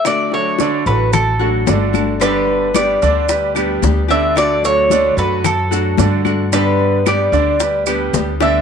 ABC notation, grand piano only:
X:1
M:4/4
L:1/8
Q:1/4=111
K:D
V:1 name="Grand piano"
z [F,FA] [D,Dd] [F,FA]2 [F,FA] [D,Dd]2 | [D,Dd]2 [G,GB] [D,Dd] [G,GB] [G,GB]2 [D,Dd]- | [D,Dd] [F,FA] [D,Dd] [F,FA]2 [F,FA] [D,Dd]2 | [D,Dd]2 [G,GB] [D,Dd] [G,GB] [G,GB]2 [D,Dd] |]